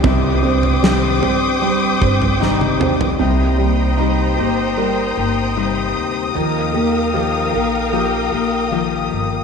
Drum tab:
SD |----o-------o---|----------------|----------------|
T1 |-------------o--|----------------|----------------|
T2 |--------------o-|----------------|----------------|
FT |o--o--o----o---o|----------------|----------------|
BD |o---------o-----|----------------|----------------|